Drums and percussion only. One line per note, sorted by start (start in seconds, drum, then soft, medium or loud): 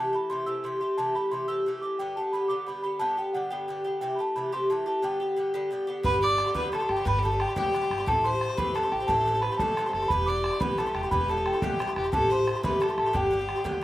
6.04 bodhran medium
6.13 bodhran soft
6.22 bodhran soft
6.38 bodhran medium
6.55 bodhran medium
6.73 bodhran medium
6.89 bodhran medium
7.06 bodhran medium
7.15 bodhran soft
7.24 bodhran soft
7.40 bodhran medium
7.56 bodhran medium
7.74 bodhran medium
7.91 bodhran medium
8.08 bodhran medium
8.16 bodhran soft
8.25 bodhran soft
8.41 bodhran medium
8.58 bodhran medium
8.76 bodhran medium
8.92 bodhran soft
9.08 bodhran medium
9.18 bodhran soft
9.26 bodhran soft
9.43 bodhran medium
9.59 bodhran medium
9.77 bodhran medium
9.93 bodhran medium
10.10 bodhran medium
10.19 bodhran soft
10.44 bodhran medium
10.61 bodhran medium
10.78 bodhran medium
10.95 bodhran medium
11.11 bodhran medium
11.21 bodhran soft
11.30 bodhran soft
11.46 bodhran medium
11.62 bodhran medium
11.80 bodhran medium
11.96 bodhran medium
12.13 bodhran medium
12.22 bodhran soft
12.31 bodhran soft
12.47 bodhran medium
12.64 bodhran medium
12.82 bodhran medium
12.98 bodhran medium
13.14 bodhran medium
13.24 bodhran soft
13.32 bodhran soft
13.49 bodhran medium
13.65 bodhran medium